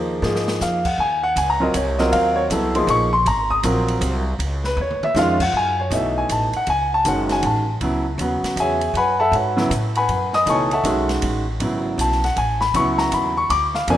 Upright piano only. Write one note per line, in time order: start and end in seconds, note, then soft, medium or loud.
0.00 0.20 F3 medium
0.00 0.20 A#3 medium
0.00 0.21 D#4 medium
0.00 0.21 G#4 medium
0.22 0.80 F3 medium
0.22 0.80 A#3 medium
0.22 0.80 D#4 medium
0.22 0.81 G#4 medium
0.62 0.85 F5 medium
0.86 0.99 F#5 medium
1.00 1.23 G#5 loud
1.23 1.36 F#5 loud
1.38 1.50 G#5 medium
1.50 1.62 A#5 loud
1.60 1.73 F#3 medium
1.60 1.73 C4 medium
1.60 1.73 F4 medium
1.60 1.73 A#4 medium
1.60 1.75 D#5 medium
1.76 1.99 C#5 medium
1.99 2.48 F#3 medium
1.99 2.48 C4 medium
1.99 2.48 F4 medium
1.99 2.48 A#4 medium
1.99 2.12 D#5 medium
2.13 2.36 F5 loud
2.36 2.44 C#5 loud
2.51 2.72 F#3 medium
2.51 2.72 B3 medium
2.51 2.73 E4 medium
2.51 2.73 A4 medium
2.75 3.08 F3 medium
2.75 3.08 A#3 medium
2.75 3.08 D#4 medium
2.75 3.08 G#4 medium
2.75 2.88 C6 medium
2.90 3.13 C#6 loud
3.13 3.26 C6 loud
3.28 3.50 A#5 medium
3.50 3.59 D#6 loud
3.64 4.21 F#3 medium
3.64 4.21 C4 medium
3.64 4.22 F4 medium
3.64 4.22 A#4 medium
4.65 4.78 B4 loud
4.81 5.03 C#5 medium
5.04 5.16 E5 loud
5.16 5.38 D#3 medium
5.16 5.38 G#3 medium
5.16 5.38 C#4 medium
5.16 5.38 F4 loud
5.16 5.41 F5 loud
5.42 5.54 F#5 loud
5.57 5.79 G#5 loud
5.80 5.92 C#5 medium
5.91 6.49 B2 medium
5.91 6.49 E3 medium
5.91 6.49 A3 medium
5.91 6.49 D#4 medium
5.91 6.16 E5 medium
6.18 6.30 G#5 medium
6.32 6.54 A5 medium
6.56 6.68 F#5 loud
6.70 6.92 G#5 loud
6.94 7.06 A5 loud
7.06 7.63 D#3 medium
7.06 7.63 G#3 medium
7.06 7.63 C#4 medium
7.06 7.64 F#4 medium
7.06 7.30 F#5 medium
7.32 7.44 G#5 medium
7.46 7.74 A5 medium
7.81 8.03 C#3 medium
7.81 8.04 F#3 medium
7.81 8.04 B3 medium
7.81 8.04 E4 medium
8.20 8.77 C#3 medium
8.20 8.77 F#3 medium
8.20 8.77 B3 medium
8.20 8.78 F#4 medium
8.60 8.94 G#4 medium
8.60 8.94 C#5 medium
8.60 8.94 E5 medium
8.60 8.94 G#5 loud
8.97 9.20 B4 medium
8.97 9.18 F#5 medium
8.97 9.20 G#5 medium
8.97 9.20 B5 loud
9.20 9.33 A4 medium
9.20 9.33 E5 medium
9.20 9.33 F#5 medium
9.20 9.33 A5 loud
9.35 9.69 F#4 medium
9.35 9.69 B4 medium
9.35 9.69 C#5 medium
9.35 9.69 F#5 medium
9.56 9.69 C#3 medium
9.56 9.69 F#3 medium
9.56 9.70 B3 medium
9.56 9.70 E4 loud
9.97 10.32 B4 medium
9.97 10.31 F#5 medium
9.97 10.32 G#5 medium
9.97 10.31 B5 medium
10.34 10.47 D#5 loud
10.34 10.47 D#6 loud
10.47 10.69 B2 medium
10.47 10.69 E3 medium
10.47 10.69 A3 medium
10.47 10.69 D#4 medium
10.47 10.72 C#5 medium
10.47 10.72 G#5 medium
10.47 10.72 A5 medium
10.47 10.72 C#6 medium
10.73 11.07 A4 medium
10.73 11.08 E5 medium
10.73 11.07 F#5 medium
10.73 11.07 A5 medium
10.85 11.42 D#3 medium
10.85 11.42 G#3 medium
10.85 11.42 C#4 medium
10.85 11.43 F#4 medium
11.61 12.18 C#3 medium
11.61 12.18 F#3 medium
11.61 12.18 B3 medium
11.61 12.19 E4 medium
12.01 12.23 A5 medium
12.24 12.37 F#5 medium
12.38 12.61 G#5 medium
12.61 12.74 B5 loud
12.74 13.32 C#3 medium
12.74 13.32 F#3 medium
12.74 13.32 B3 medium
12.74 13.33 E4 medium
12.74 12.99 C#6 loud
12.98 13.12 A#5 loud
13.14 13.37 B5 loud
13.37 13.50 C#6 loud
13.50 13.74 D6 loud
13.75 13.88 F5 medium
13.89 13.97 C3 medium
13.89 13.97 F3 medium
13.89 13.97 A#3 medium
13.89 13.97 D4 medium
13.89 13.97 G#5 loud